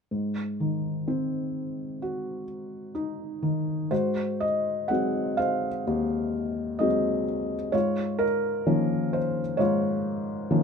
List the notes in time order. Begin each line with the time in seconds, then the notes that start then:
0.11 G#2
0.60 D#3
1.08 C4
2.02 F#4
2.95 D#4
3.43 D#3
3.91 G#2 F#4 C5
4.40 D#5
4.88 F#3 G#3 C4 F#5
5.37 C5 F5
5.87 D#2
6.79 F#3 G#3 C4 D#5
7.72 G#2 F4 C#5
8.19 A#4
8.66 D#3 F3 A#3 C#4
9.13 C5
9.57 G#2 F4 C#5
10.51 D#3 F3 A#3 C#4